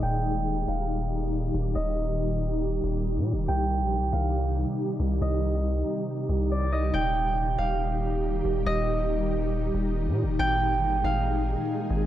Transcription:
Already playing: A#2 D#3 D#4 D#5
0.03 D#1 G3 G4 G5
0.68 D#1 F5
1.55 D#1
1.75 D#1 D#5
2.84 D#1
3.16 A#2
3.33 D#1
3.48 C2 C3 D#4 G5
3.81 A#1
3.97 C2
4.13 C2 F5
5.00 C2
5.21 C2 D#5
6.29 C2
6.51 D5
6.72 D#5
6.94 D#1 A#2 D#3 G3 D#4 G4 G5
7.58 D#1 F5
8.45 D#1
8.66 D#1 D#5
9.75 D#1
10.07 A#2
10.23 D#1
10.39 G#1 G#3 G#4 G5
10.72 G1
10.88 G#1
11.04 G#1 F5
11.91 G#1

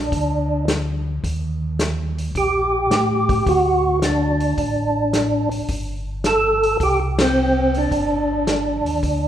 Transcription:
Already playing: D4
0.12 D2, kick, open hi-hat
0.68 snare, closed hi-hat
1.24 D#2, kick, open hi-hat
1.79 snare, closed hi-hat
2.18 open hi-hat
2.35 A#1 G4, kick, open hi-hat
2.90 A2, snare, closed hi-hat
3.29 kick, open hi-hat
3.46 D2 F#4, kick, open hi-hat
4.02 D4, snare, closed hi-hat
4.40 open hi-hat
4.57 A1, kick, open hi-hat
5.13 snare, closed hi-hat
5.51 A1, open hi-hat
5.68 G1, kick, open hi-hat
6.24 A4, snare, closed hi-hat
6.63 open hi-hat
6.80 C2 G4, kick, open hi-hat
7.19 C4, snare, ride
7.74 D4, open hi-hat
7.91 G1, kick, open hi-hat
8.47 snare, closed hi-hat
8.85 D#2, open hi-hat
9.03 D2, kick, open hi-hat

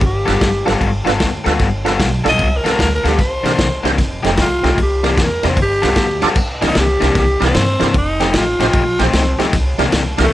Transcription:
0.01 G1, kick, ride
0.06 G4
0.26 G1 G3 B3 D4 F4 A4 B4, snare, ride
0.41 G1, kick, snare, ride
0.66 G1 G3 B3 D4 F4 A4 B4, snare, ride
0.81 G1, kick, ride
1.05 G1 G3 B3 D4 F4 A4 B4, snare, ride
1.20 D2, kick, snare, ride
1.44 D2 G3 B3 D4 F4 A4 B4, snare, ride
1.59 G1, kick, snare, ride
1.85 G3 B3 D4 F4 A4 B4, snare, ride
2.00 B1, kick, snare, ride
2.24 B1 G3 B3 D4 F4 A4 D5, snare, ride
2.29 D#5
2.39 C2, kick, ride
2.57 A#4
2.64 C2 G3 B3 D4 F4 A4 B4, snare, ride
2.70 A#4
2.79 D2 A#4, kick, snare, ride
2.95 A#4
3.04 D2 G3 B3 D4 F4 A4 B4, snare, ride
3.08 G4
3.19 C2 C5, kick, snare, ride
3.44 C2 C3 E3 A#3 D4 E4 G4 A#4, snare, ride
3.59 C2, kick, snare, ride
3.83 C2 C3 E3 A#3 D4 E4 G4 C5, snare, ride
3.98 F1, kick, snare, ride
4.23 F1 F3 A3 C4 D#4 G4 A4, snare, ride
4.37 C2, kick, snare, ride
4.41 F4
4.63 C2 F3 A3 C4 D#4 G4 A4, snare, ride
4.78 C2, kick, ride
4.83 G4
5.03 C3 E3 A#3 D4 E4 G4 A#4, snare, ride
5.17 E2, kick, snare, ride
5.23 A#4
5.43 E2 C3 E3 A#3 D4 E4 G4 A#4, snare, ride
5.48 C5
5.57 G1, kick, ride
5.62 G4
5.82 C2 G3 B3 D4 F4 A4 B4, snare, ride
5.96 D2, kick, snare, ride
6.22 D2 G3 B3 D4 F4 A4 D5, snare, ride
6.35 C2, kick, crash
6.62 C2 C3 E3 A#3 D4 E4 G4 A#4, snare, ride
6.67 D#4
6.75 C2, snare, ride
6.80 G4
7.00 C2 C3 E3 A#3 D4 E4 G4 A#4, snare, ride
7.15 C2 G4, kick, snare, ride
7.40 C2 C3 E3 A#3 D4 E4 G4 A#4, snare, ride
7.45 C4
7.54 G2, snare, ride
7.79 G2 C3 E3 A#3 D4 E4 G4 A#4, snare, ride
7.94 F1 D#4, kick, ride
8.20 F3 A3 C4 D#4 G4 A4, snare, ride
8.34 A1 F4, snare, ride
8.60 A1 F3 A3 C4 D#4 G4 C5, snare, ride
8.73 A#1, kick, ride
8.99 A#1 F3 A3 C4 D#4 G4 C5, snare, ride
9.03 C4
9.13 C2, snare, ride
9.39 C2 F3 A3 C4 D#4 G4 A4, snare, ride
9.53 C2, kick, snare, ride
9.78 C2 C3 E3 A#3 D4 E4 G4 A#4, snare, ride
9.92 C2, snare, ride
10.17 C2 C3 E3 A#3 D4 E4 G4 A#4, snare, ride
10.24 A3

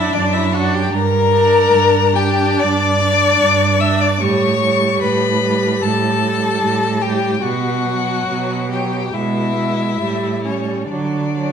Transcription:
Already playing: D4 E4 E5
0.13 F#2 D4 D5
0.33 E4 E5
0.53 D4 F#4 F#5
0.74 G4 G5
0.93 G2 A#4 A#5
1.33 D4
1.73 G2
2.16 D4 G4 G5
2.59 G2 D5 D6
3.01 D4
3.40 G2
3.80 D4 E5 E6
4.01 D5 D6
4.21 A2 G3 C#5 C#6
4.62 G3
5.01 A2 B4 B5
5.42 G3
5.83 A2 A4 A5
6.24 G3
6.63 A2
7.02 G3 G4 G5
7.43 B2 F#4 F#5
7.85 F#3
8.28 B2
8.70 F#3 G4 G5
9.13 B2 G#3 E4 E5
9.56 G#3
10.01 A2 G3
10.44 G3 C#4 C#5
10.90 D3 F#3 D4 D5
11.37 F#3

